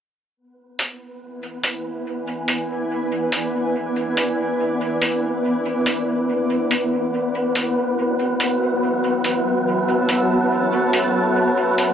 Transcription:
0.36 synth texture B3 B4, ambient pad E4
0.79 ambient pad G#5, closed hi-hat
0.84 ambient pad B4
0.97 ambient pad D5
1.64 closed hi-hat
2.48 closed hi-hat
3.32 closed hi-hat
4.17 closed hi-hat
5.02 closed hi-hat
5.86 closed hi-hat
6.71 closed hi-hat
7.13 ambient pad F#4
7.43 ambient pad C#5
7.55 closed hi-hat
7.65 ambient pad E5
8.40 closed hi-hat
8.80 ambient pad A5
9.24 closed hi-hat
10.09 closed hi-hat
10.93 closed hi-hat
11.78 closed hi-hat

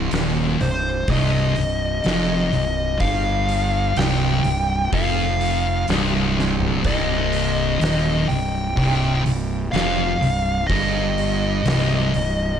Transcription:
Already playing: distorted electric guitar C2
0.11 fingered electric bass D#1, distorted electric guitar D#2, snare, open hi-hat
0.60 fingered electric bass C1, distorted electric guitar C2, lead electric guitar C5, open hi-hat
1.08 fingered electric bass C1, distorted electric guitar C2, lead electric guitar D#5, kick, open hi-hat
1.56 fingered electric bass C1, distorted electric guitar C2, open hi-hat
2.04 fingered electric bass F1, distorted electric guitar F2, snare, open hi-hat
2.53 fingered electric bass C1, distorted electric guitar C2, open hi-hat
3.00 fingered electric bass G1, distorted electric guitar G2, lead electric guitar F5, kick, open hi-hat
3.49 open hi-hat
3.97 fingered electric bass C1, distorted electric guitar C2, lead electric guitar G5, snare, open hi-hat
4.44 fingered electric bass C1, distorted electric guitar C2, open hi-hat
4.92 fingered electric bass F1, distorted electric guitar F2, lead electric guitar F5, kick, open hi-hat
5.41 open hi-hat
5.88 fingered electric bass C1, distorted electric guitar C2, snare, open hi-hat
6.39 snare
6.61 floor tom
6.84 fingered electric bass C1, distorted electric guitar C2, lead electric guitar D#5, kick, open hi-hat, crash
7.32 open hi-hat
7.81 fingered electric bass D#1, distorted electric guitar D#2, snare, open hi-hat
8.28 fingered electric bass C1, distorted electric guitar C2, lead electric guitar G5, open hi-hat
8.77 fingered electric bass C1, distorted electric guitar C2, kick, open hi-hat
9.26 fingered electric bass C1, distorted electric guitar C2, open hi-hat
9.72 fingered electric bass F1, distorted electric guitar F2, lead electric guitar F5, open hi-hat
9.76 snare
10.21 fingered electric bass C1, distorted electric guitar C2, open hi-hat
10.67 fingered electric bass G1, distorted electric guitar G2, lead electric guitar D#5, kick, open hi-hat
11.18 open hi-hat
11.66 fingered electric bass C1, distorted electric guitar C2, snare, open hi-hat
12.14 fingered electric bass C1, distorted electric guitar C2, open hi-hat

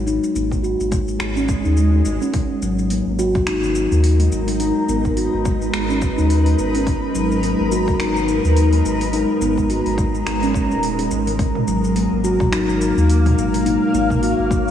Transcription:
Already playing: sub bass G#1
0.06 steel tongue drum D#4, shaker
0.24 shaker
0.35 sub bass G#1, steel tongue drum A#3, shaker
0.52 kick, shaker
0.63 steel tongue drum F#4, shaker
0.80 sub bass G#1, shaker
0.91 steel tongue drum G#3, kick, shaker
1.08 shaker
1.19 sub bass G#1, steel tongue drum G#4, finger snap, swell, shaker
1.36 steel tongue drum C#4, shaker
1.49 kick, shaker
1.64 sub bass D#2, steel tongue drum D#4, shaker
1.77 shaker
1.93 steel tongue drum D#4
2.05 sub bass G#1, shaker
2.22 steel tongue drum C#4, shaker
2.33 ambient pad G#3, steel tongue drum G#3, kick, open hi-hat, shaker
2.50 ambient pad A#4
2.62 sub bass G#1, steel tongue drum F#3, shaker
2.67 ambient pad D#4
2.79 shaker
2.90 steel tongue drum A#3, open hi-hat, shaker
3.06 sub bass G#1
3.19 steel tongue drum F#4, shaker
3.35 kick, shaker
3.47 sub bass G#1, steel tongue drum D#4, finger snap, open hi-hat, shaker
3.63 steel tongue drum D#3, shaker
3.75 shaker
3.91 sub bass D#2, steel tongue drum D#4, shaker
3.96 ambient pad B4
4.04 open hi-hat, shaker
4.19 steel tongue drum G#3, open hi-hat
4.32 sub bass G#1, shaker
4.48 steel tongue drum G#3, open hi-hat, shaker
4.60 steel tongue drum D#4, open hi-hat, shaker
4.88 sub bass G#1, steel tongue drum B3, shaker
5.05 kick, shaker
5.17 steel tongue drum F#4, open hi-hat, shaker
5.33 sub bass G#1
5.45 steel tongue drum G#3, kick, shaker
5.62 shaker
5.73 sub bass G#1, steel tongue drum G#4, finger snap, open hi-hat, shaker
5.89 steel tongue drum C#4, shaker
6.02 kick, shaker
6.18 sub bass D#2, steel tongue drum D#4, shaker
6.30 open hi-hat, shaker
6.46 steel tongue drum D#4, open hi-hat
6.58 sub bass G#1, shaker
6.74 steel tongue drum C#4, open hi-hat, shaker
6.86 steel tongue drum G#3, kick, open hi-hat, shaker
7.14 sub bass G#1, steel tongue drum F#3, shaker
7.32 shaker
7.43 steel tongue drum A#3, open hi-hat, shaker
7.59 sub bass G#1
7.72 steel tongue drum F#4, shaker
7.88 kick, shaker
7.99 sub bass G#1, steel tongue drum D#4, finger snap, open hi-hat, shaker
8.16 steel tongue drum D#3, shaker
8.28 shaker
8.44 sub bass D#2, steel tongue drum D#4, shaker
8.57 open hi-hat, shaker
8.72 steel tongue drum G#3, open hi-hat
8.85 sub bass G#1, shaker
9.01 steel tongue drum G#3, open hi-hat, shaker
9.13 steel tongue drum D#4, open hi-hat, shaker
9.41 sub bass G#1, steel tongue drum B3, shaker
9.58 kick, shaker
9.70 steel tongue drum F#4, open hi-hat, shaker
9.86 sub bass G#1, open hi-hat
9.98 steel tongue drum G#3, kick, shaker
10.15 shaker
10.26 sub bass G#1, steel tongue drum G#4, finger snap, open hi-hat, shaker
10.43 steel tongue drum C#4, open hi-hat, shaker
10.54 steel tongue drum C#4, kick, shaker
10.71 sub bass D#1, steel tongue drum G#3, shaker
10.83 open hi-hat, shaker
10.99 steel tongue drum G#4, open hi-hat
11.11 sub bass G#1, shaker
11.27 steel tongue drum D#3, open hi-hat, shaker
11.39 steel tongue drum G#3, ambient pad A#3, kick, open hi-hat, shaker
11.55 mid tom
11.67 sub bass G#1, steel tongue drum F#3, shaker
11.80 ambient pad F5
11.84 shaker
11.96 steel tongue drum A#3, open hi-hat, shaker
12.12 sub bass G#1
12.24 steel tongue drum F#4, shaker
12.40 kick, mid tom, shaker
12.52 sub bass G#1, steel tongue drum D#4, finger snap, open hi-hat, shaker
12.68 steel tongue drum D#3, shaker
12.81 shaker
12.96 sub bass D#2, steel tongue drum D#4, shaker
13.10 open hi-hat, shaker
13.21 steel tongue drum G#3, ambient pad C#5
13.26 mid tom, open hi-hat
13.37 sub bass G#1, shaker
13.53 steel tongue drum G#3, open hi-hat, shaker
13.66 steel tongue drum D#4, open hi-hat, shaker
13.93 sub bass G#1, steel tongue drum A#3, shaker
14.10 kick, mid tom, shaker
14.22 steel tongue drum F#4, open hi-hat, shaker
14.39 sub bass G#1
14.50 steel tongue drum G#3, kick, shaker

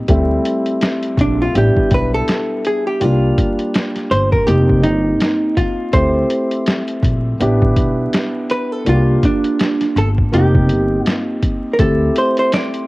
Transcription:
0.08 upright bass D2, grand piano G3 A3 C4 E4, kick, closed hi-hat
0.45 closed hi-hat
0.66 closed hi-hat
0.81 snare, closed hi-hat
1.03 closed hi-hat
1.17 upright bass A#1, hollow-body jazz guitar D4, kick, closed hi-hat
1.42 hollow-body jazz guitar F4
1.54 upright bass A1, grand piano G3 B3 D4 E4, hollow-body jazz guitar G4, closed hi-hat
1.77 muted upright bass stroke, kick
1.91 upright bass B1, hollow-body jazz guitar B4, kick, closed hi-hat
2.14 hollow-body jazz guitar A4
2.28 snare, closed hi-hat
2.65 hollow-body jazz guitar G#4, closed hi-hat
2.87 hollow-body jazz guitar G4
3.00 upright bass C2, grand piano G3 A#3 D4 F4, hollow-body jazz guitar F4, closed hi-hat
3.38 kick, closed hi-hat
3.59 closed hi-hat
3.74 snare, closed hi-hat
3.96 snare, closed hi-hat
4.11 upright bass G1, hollow-body jazz guitar C5, closed hi-hat
4.32 hollow-body jazz guitar A#4, kick
4.46 upright bass F1, grand piano A#3 C4 D#4 G4, hollow-body jazz guitar G4, closed hi-hat
4.69 kick
4.83 upright bass G1, hollow-body jazz guitar D#4, closed hi-hat
5.20 snare, closed hi-hat
5.57 hollow-body jazz guitar F4, kick, closed hi-hat
5.93 upright bass D2, grand piano A3 C4 E4 G4, hollow-body jazz guitar C5, kick, closed hi-hat
6.30 closed hi-hat
6.51 closed hi-hat
6.66 snare, closed hi-hat
6.88 closed hi-hat
7.03 upright bass A#1, kick, closed hi-hat
7.40 upright bass A1, grand piano B3 D4 E4 G4, closed hi-hat
7.62 kick
7.76 upright bass B1, kick, closed hi-hat
8.13 snare, closed hi-hat
8.50 hollow-body jazz guitar B4, closed hi-hat
8.72 hollow-body jazz guitar A4
8.85 upright bass C2, grand piano A#3 D4 F4 F#4, closed hi-hat
8.89 hollow-body jazz guitar F4
8.94 grand piano G4
9.23 hollow-body jazz guitar D4, kick, closed hi-hat
9.44 closed hi-hat
9.59 snare, closed hi-hat
9.81 snare, closed hi-hat
9.96 upright bass G1, hollow-body jazz guitar A4, closed hi-hat
10.18 kick
10.32 upright bass F1, grand piano A#3 C4 D#4 G4, hollow-body jazz guitar G4, closed hi-hat
10.55 kick
10.69 upright bass G1, closed hi-hat
11.06 hollow-body jazz guitar F4, snare, closed hi-hat
11.43 kick, closed hi-hat
11.73 hollow-body jazz guitar A#4
11.78 upright bass D2, grand piano A3 C4 E4 G4, hollow-body jazz guitar A4, kick, closed hi-hat
12.16 hollow-body jazz guitar C5, closed hi-hat
12.37 hollow-body jazz guitar C5, closed hi-hat
12.52 hollow-body jazz guitar D5, snare, closed hi-hat
12.74 closed hi-hat

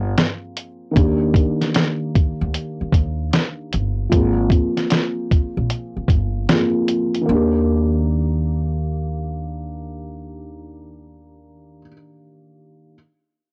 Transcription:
Already playing: upright bass G1, felt piano F3 A#3 C4 G#4
0.18 snare, closed hi-hat
0.57 closed hi-hat
0.91 felt piano D#3 A#3
0.96 upright bass D#2, felt piano D4 G4, kick, closed hi-hat
1.34 kick, closed hi-hat
1.61 snare, closed hi-hat
1.75 snare, closed hi-hat
2.16 kick, closed hi-hat
2.41 upright bass D2
2.54 closed hi-hat
2.81 muted upright bass stroke
2.92 upright bass D#2, kick, closed hi-hat
3.33 snare, closed hi-hat
3.73 upright bass G1, closed hi-hat
4.09 upright bass G#1, felt piano F3 A#3, kick, closed hi-hat
4.14 felt piano C4 G#4
4.50 kick, closed hi-hat
4.77 snare, closed hi-hat
4.90 snare, closed hi-hat
5.31 kick, closed hi-hat
5.57 upright bass A#1
5.70 closed hi-hat
5.97 muted upright bass stroke
6.08 upright bass G1, kick, closed hi-hat
6.49 felt piano F3 A#3 C4 G#4, snare, closed hi-hat
6.88 closed hi-hat
7.14 closed hi-hat
7.21 felt piano D#3
7.26 upright bass D#2, felt piano A#3
7.30 felt piano D4
7.35 felt piano G4

